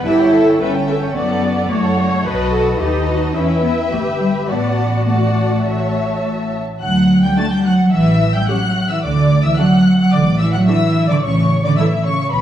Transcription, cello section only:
0, 0, Header, 1, 2, 480
1, 0, Start_track
1, 0, Key_signature, 2, "major"
1, 0, Tempo, 549954
1, 56, Time_signature, 4, 2, 24, 8
1, 3417, Tempo, 576369
1, 6297, Tempo, 549954
1, 10697, End_track
2, 0, Start_track
2, 0, Title_t, "Cello section"
2, 0, Program_c, 0, 48
2, 53, Note_on_c, 0, 64, 87
2, 518, Note_off_c, 0, 64, 0
2, 530, Note_on_c, 0, 61, 78
2, 994, Note_off_c, 0, 61, 0
2, 1001, Note_on_c, 0, 59, 85
2, 1480, Note_off_c, 0, 59, 0
2, 1481, Note_on_c, 0, 57, 74
2, 1965, Note_off_c, 0, 57, 0
2, 1965, Note_on_c, 0, 66, 78
2, 2434, Note_off_c, 0, 66, 0
2, 2443, Note_on_c, 0, 63, 82
2, 2924, Note_on_c, 0, 61, 81
2, 2925, Note_off_c, 0, 63, 0
2, 3164, Note_on_c, 0, 59, 71
2, 3168, Note_off_c, 0, 61, 0
2, 3234, Note_off_c, 0, 59, 0
2, 3412, Note_on_c, 0, 57, 67
2, 3479, Note_off_c, 0, 57, 0
2, 3652, Note_on_c, 0, 55, 68
2, 3718, Note_off_c, 0, 55, 0
2, 3893, Note_on_c, 0, 59, 72
2, 4371, Note_off_c, 0, 59, 0
2, 4380, Note_on_c, 0, 57, 58
2, 5589, Note_off_c, 0, 57, 0
2, 5828, Note_on_c, 0, 54, 66
2, 6154, Note_off_c, 0, 54, 0
2, 6178, Note_on_c, 0, 55, 64
2, 6292, Note_off_c, 0, 55, 0
2, 6292, Note_on_c, 0, 57, 69
2, 6412, Note_off_c, 0, 57, 0
2, 6414, Note_on_c, 0, 55, 65
2, 6534, Note_off_c, 0, 55, 0
2, 6535, Note_on_c, 0, 54, 64
2, 6775, Note_on_c, 0, 52, 81
2, 6778, Note_off_c, 0, 54, 0
2, 7131, Note_off_c, 0, 52, 0
2, 7137, Note_on_c, 0, 55, 67
2, 7186, Note_off_c, 0, 55, 0
2, 7261, Note_on_c, 0, 54, 73
2, 7617, Note_off_c, 0, 54, 0
2, 7625, Note_on_c, 0, 52, 59
2, 7743, Note_off_c, 0, 52, 0
2, 7743, Note_on_c, 0, 50, 65
2, 8096, Note_off_c, 0, 50, 0
2, 8102, Note_on_c, 0, 52, 61
2, 8220, Note_off_c, 0, 52, 0
2, 8222, Note_on_c, 0, 54, 66
2, 8571, Note_off_c, 0, 54, 0
2, 8582, Note_on_c, 0, 54, 67
2, 8699, Note_off_c, 0, 54, 0
2, 8701, Note_on_c, 0, 50, 71
2, 8771, Note_off_c, 0, 50, 0
2, 8940, Note_on_c, 0, 52, 65
2, 9058, Note_off_c, 0, 52, 0
2, 9059, Note_on_c, 0, 54, 70
2, 9180, Note_off_c, 0, 54, 0
2, 9180, Note_on_c, 0, 52, 77
2, 9540, Note_off_c, 0, 52, 0
2, 9540, Note_on_c, 0, 50, 69
2, 9588, Note_off_c, 0, 50, 0
2, 9660, Note_on_c, 0, 49, 71
2, 10012, Note_off_c, 0, 49, 0
2, 10018, Note_on_c, 0, 50, 70
2, 10136, Note_off_c, 0, 50, 0
2, 10140, Note_on_c, 0, 52, 72
2, 10210, Note_off_c, 0, 52, 0
2, 10378, Note_on_c, 0, 49, 61
2, 10612, Note_off_c, 0, 49, 0
2, 10617, Note_on_c, 0, 47, 81
2, 10697, Note_off_c, 0, 47, 0
2, 10697, End_track
0, 0, End_of_file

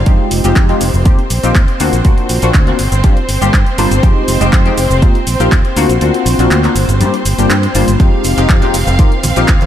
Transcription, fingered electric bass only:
0, 0, Header, 1, 2, 480
1, 0, Start_track
1, 0, Tempo, 495868
1, 63, Time_signature, 4, 2, 24, 8
1, 9353, End_track
2, 0, Start_track
2, 0, Title_t, "Fingered electric bass"
2, 0, Program_c, 0, 33
2, 62, Note_on_c, 0, 41, 99
2, 140, Note_off_c, 0, 41, 0
2, 302, Note_on_c, 0, 29, 81
2, 380, Note_off_c, 0, 29, 0
2, 429, Note_on_c, 0, 29, 86
2, 499, Note_off_c, 0, 29, 0
2, 543, Note_on_c, 0, 41, 104
2, 696, Note_off_c, 0, 41, 0
2, 784, Note_on_c, 0, 29, 86
2, 861, Note_off_c, 0, 29, 0
2, 908, Note_on_c, 0, 29, 98
2, 1023, Note_on_c, 0, 39, 96
2, 1037, Note_off_c, 0, 29, 0
2, 1100, Note_off_c, 0, 39, 0
2, 1261, Note_on_c, 0, 34, 87
2, 1340, Note_off_c, 0, 34, 0
2, 1389, Note_on_c, 0, 34, 79
2, 1459, Note_off_c, 0, 34, 0
2, 1503, Note_on_c, 0, 39, 96
2, 1580, Note_off_c, 0, 39, 0
2, 1745, Note_on_c, 0, 38, 89
2, 1821, Note_off_c, 0, 38, 0
2, 1867, Note_on_c, 0, 34, 98
2, 1938, Note_off_c, 0, 34, 0
2, 1984, Note_on_c, 0, 38, 99
2, 2061, Note_off_c, 0, 38, 0
2, 2222, Note_on_c, 0, 34, 79
2, 2300, Note_off_c, 0, 34, 0
2, 2348, Note_on_c, 0, 34, 89
2, 2419, Note_off_c, 0, 34, 0
2, 2463, Note_on_c, 0, 38, 104
2, 2616, Note_off_c, 0, 38, 0
2, 2703, Note_on_c, 0, 31, 89
2, 2781, Note_off_c, 0, 31, 0
2, 2825, Note_on_c, 0, 31, 97
2, 2942, Note_on_c, 0, 43, 97
2, 2957, Note_off_c, 0, 31, 0
2, 3020, Note_off_c, 0, 43, 0
2, 3179, Note_on_c, 0, 31, 85
2, 3258, Note_off_c, 0, 31, 0
2, 3305, Note_on_c, 0, 31, 81
2, 3377, Note_off_c, 0, 31, 0
2, 3424, Note_on_c, 0, 43, 99
2, 3501, Note_off_c, 0, 43, 0
2, 3660, Note_on_c, 0, 31, 91
2, 3739, Note_off_c, 0, 31, 0
2, 3785, Note_on_c, 0, 31, 100
2, 3857, Note_off_c, 0, 31, 0
2, 3903, Note_on_c, 0, 41, 100
2, 3981, Note_off_c, 0, 41, 0
2, 4141, Note_on_c, 0, 29, 84
2, 4220, Note_off_c, 0, 29, 0
2, 4266, Note_on_c, 0, 29, 86
2, 4338, Note_off_c, 0, 29, 0
2, 4384, Note_on_c, 0, 41, 107
2, 4536, Note_off_c, 0, 41, 0
2, 4621, Note_on_c, 0, 29, 88
2, 4700, Note_off_c, 0, 29, 0
2, 4747, Note_on_c, 0, 29, 103
2, 4863, Note_on_c, 0, 39, 98
2, 4878, Note_off_c, 0, 29, 0
2, 4941, Note_off_c, 0, 39, 0
2, 5100, Note_on_c, 0, 34, 83
2, 5179, Note_off_c, 0, 34, 0
2, 5226, Note_on_c, 0, 34, 82
2, 5297, Note_off_c, 0, 34, 0
2, 5343, Note_on_c, 0, 39, 98
2, 5421, Note_off_c, 0, 39, 0
2, 5578, Note_on_c, 0, 38, 90
2, 5658, Note_off_c, 0, 38, 0
2, 5704, Note_on_c, 0, 34, 100
2, 5777, Note_off_c, 0, 34, 0
2, 5818, Note_on_c, 0, 38, 95
2, 5898, Note_off_c, 0, 38, 0
2, 6056, Note_on_c, 0, 34, 82
2, 6137, Note_off_c, 0, 34, 0
2, 6181, Note_on_c, 0, 34, 87
2, 6255, Note_off_c, 0, 34, 0
2, 6295, Note_on_c, 0, 38, 105
2, 6452, Note_off_c, 0, 38, 0
2, 6537, Note_on_c, 0, 31, 84
2, 6618, Note_off_c, 0, 31, 0
2, 6664, Note_on_c, 0, 31, 99
2, 6780, Note_on_c, 0, 43, 100
2, 6794, Note_off_c, 0, 31, 0
2, 6859, Note_off_c, 0, 43, 0
2, 7020, Note_on_c, 0, 31, 85
2, 7099, Note_off_c, 0, 31, 0
2, 7146, Note_on_c, 0, 31, 77
2, 7218, Note_off_c, 0, 31, 0
2, 7259, Note_on_c, 0, 43, 99
2, 7413, Note_off_c, 0, 43, 0
2, 7500, Note_on_c, 0, 31, 102
2, 7579, Note_off_c, 0, 31, 0
2, 7626, Note_on_c, 0, 31, 89
2, 7698, Note_off_c, 0, 31, 0
2, 7743, Note_on_c, 0, 41, 95
2, 7821, Note_off_c, 0, 41, 0
2, 7980, Note_on_c, 0, 29, 81
2, 8059, Note_off_c, 0, 29, 0
2, 8106, Note_on_c, 0, 29, 83
2, 8178, Note_off_c, 0, 29, 0
2, 8224, Note_on_c, 0, 41, 104
2, 8376, Note_off_c, 0, 41, 0
2, 8461, Note_on_c, 0, 29, 84
2, 8539, Note_off_c, 0, 29, 0
2, 8584, Note_on_c, 0, 29, 101
2, 8703, Note_on_c, 0, 39, 95
2, 8718, Note_off_c, 0, 29, 0
2, 8781, Note_off_c, 0, 39, 0
2, 8940, Note_on_c, 0, 34, 82
2, 9019, Note_off_c, 0, 34, 0
2, 9066, Note_on_c, 0, 34, 77
2, 9138, Note_off_c, 0, 34, 0
2, 9182, Note_on_c, 0, 39, 98
2, 9260, Note_off_c, 0, 39, 0
2, 9353, End_track
0, 0, End_of_file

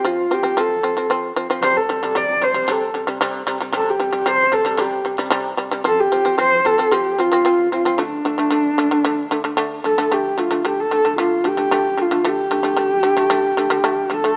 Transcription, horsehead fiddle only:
0, 0, Header, 1, 2, 480
1, 0, Start_track
1, 0, Tempo, 531444
1, 1466, Time_signature, 4, 2, 24, 8
1, 12976, End_track
2, 0, Start_track
2, 0, Title_t, "Horsehead fiddle"
2, 0, Program_c, 0, 110
2, 60, Note_on_c, 0, 65, 77
2, 302, Note_on_c, 0, 67, 82
2, 315, Note_off_c, 0, 65, 0
2, 540, Note_on_c, 0, 69, 74
2, 554, Note_off_c, 0, 67, 0
2, 1003, Note_off_c, 0, 69, 0
2, 1462, Note_on_c, 0, 72, 91
2, 1592, Note_on_c, 0, 69, 80
2, 1606, Note_off_c, 0, 72, 0
2, 1953, Note_on_c, 0, 74, 91
2, 1966, Note_off_c, 0, 69, 0
2, 2197, Note_on_c, 0, 72, 82
2, 2210, Note_off_c, 0, 74, 0
2, 2445, Note_on_c, 0, 69, 71
2, 2459, Note_off_c, 0, 72, 0
2, 2673, Note_off_c, 0, 69, 0
2, 3400, Note_on_c, 0, 69, 89
2, 3518, Note_on_c, 0, 67, 81
2, 3532, Note_off_c, 0, 69, 0
2, 3859, Note_on_c, 0, 72, 93
2, 3872, Note_off_c, 0, 67, 0
2, 4092, Note_on_c, 0, 69, 88
2, 4105, Note_off_c, 0, 72, 0
2, 4345, Note_on_c, 0, 67, 74
2, 4358, Note_off_c, 0, 69, 0
2, 4581, Note_off_c, 0, 67, 0
2, 5303, Note_on_c, 0, 69, 95
2, 5420, Note_on_c, 0, 67, 96
2, 5434, Note_off_c, 0, 69, 0
2, 5776, Note_off_c, 0, 67, 0
2, 5782, Note_on_c, 0, 72, 102
2, 6006, Note_on_c, 0, 69, 93
2, 6020, Note_off_c, 0, 72, 0
2, 6250, Note_on_c, 0, 67, 84
2, 6264, Note_off_c, 0, 69, 0
2, 6504, Note_on_c, 0, 65, 94
2, 6518, Note_off_c, 0, 67, 0
2, 6981, Note_off_c, 0, 65, 0
2, 6992, Note_on_c, 0, 65, 81
2, 7243, Note_on_c, 0, 62, 86
2, 7256, Note_off_c, 0, 65, 0
2, 8673, Note_off_c, 0, 62, 0
2, 8902, Note_on_c, 0, 69, 78
2, 9145, Note_on_c, 0, 67, 80
2, 9158, Note_off_c, 0, 69, 0
2, 9388, Note_on_c, 0, 65, 69
2, 9401, Note_off_c, 0, 67, 0
2, 9615, Note_on_c, 0, 67, 80
2, 9629, Note_off_c, 0, 65, 0
2, 9752, Note_on_c, 0, 69, 90
2, 9766, Note_off_c, 0, 67, 0
2, 10099, Note_off_c, 0, 69, 0
2, 10104, Note_on_c, 0, 65, 78
2, 10359, Note_on_c, 0, 67, 90
2, 10372, Note_off_c, 0, 65, 0
2, 10847, Note_on_c, 0, 65, 76
2, 10860, Note_off_c, 0, 67, 0
2, 11087, Note_on_c, 0, 67, 97
2, 11100, Note_off_c, 0, 65, 0
2, 12766, Note_on_c, 0, 69, 92
2, 12779, Note_off_c, 0, 67, 0
2, 12976, Note_off_c, 0, 69, 0
2, 12976, End_track
0, 0, End_of_file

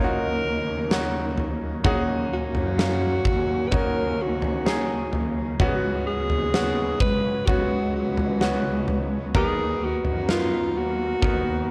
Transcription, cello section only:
0, 0, Header, 1, 2, 480
1, 0, Start_track
1, 0, Key_signature, -6, "minor"
1, 0, Tempo, 937500
1, 945, Time_signature, 4, 2, 24, 8
1, 5995, End_track
2, 0, Start_track
2, 0, Title_t, "Cello section"
2, 0, Program_c, 0, 48
2, 0, Note_on_c, 0, 39, 98
2, 925, Note_off_c, 0, 39, 0
2, 944, Note_on_c, 0, 39, 92
2, 1284, Note_off_c, 0, 39, 0
2, 1308, Note_on_c, 0, 42, 84
2, 1646, Note_off_c, 0, 42, 0
2, 1664, Note_on_c, 0, 39, 93
2, 1888, Note_off_c, 0, 39, 0
2, 1907, Note_on_c, 0, 39, 111
2, 2606, Note_off_c, 0, 39, 0
2, 2628, Note_on_c, 0, 39, 89
2, 2850, Note_off_c, 0, 39, 0
2, 2867, Note_on_c, 0, 37, 92
2, 3206, Note_off_c, 0, 37, 0
2, 3225, Note_on_c, 0, 39, 81
2, 3564, Note_off_c, 0, 39, 0
2, 3585, Note_on_c, 0, 37, 92
2, 3808, Note_off_c, 0, 37, 0
2, 3827, Note_on_c, 0, 37, 107
2, 4766, Note_off_c, 0, 37, 0
2, 4788, Note_on_c, 0, 39, 90
2, 5126, Note_off_c, 0, 39, 0
2, 5147, Note_on_c, 0, 42, 91
2, 5485, Note_off_c, 0, 42, 0
2, 5509, Note_on_c, 0, 39, 91
2, 5730, Note_off_c, 0, 39, 0
2, 5746, Note_on_c, 0, 39, 106
2, 5995, Note_off_c, 0, 39, 0
2, 5995, End_track
0, 0, End_of_file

